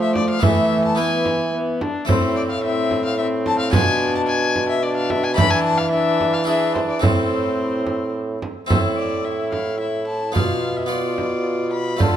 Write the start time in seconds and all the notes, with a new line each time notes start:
Already playing: F3 A3 A4
0.02 E5
0.15 D5, frame drum
0.30 F5
0.39 E3 A3 B3 E4 A4, frame drum
0.43 E3 E5
0.85 A5
0.95 B3 E4 B4 G#5
1.26 frame drum
1.54 B3
1.81 D4, frame drum
2.05 A2 A3 E4 C5, frame drum
2.10 C4
2.36 D5
2.50 F5
2.64 C4 E5
2.91 frame drum
3.05 F5
3.18 C4 E5
3.46 A5, frame drum
3.59 F5
3.70 B2 D4 F4 B4 G#5, frame drum
4.15 A5
4.28 G#5
4.56 frame drum
4.69 E5
4.82 D4 D5
4.97 F5
5.10 E5, frame drum
5.24 G#5
5.34 E3 D4 E4 A4 B5, frame drum
5.38 E3
5.50 G#5
5.63 A5
5.78 F5
5.91 D4 E5
6.21 frame drum
6.33 F5
6.44 D4 E4 G#4 E5
6.75 C5, frame drum
6.90 D5
6.99 A2 C4 E4 A4 C5, frame drum
7.87 frame drum
8.42 frame drum
8.66 A2 C4 E4 A4 C5, frame drum
8.71 A2
8.97 D5
9.25 E4 E5
9.52 F5, frame drum
9.80 E4 E5
10.07 A5
10.32 B2 B3 F4 D5 F5, frame drum
10.76 E5
10.86 B3 F4 D5
10.90 F4
11.18 frame drum
11.72 B5
11.97 D3 A3 F4 D5, frame drum
12.01 A5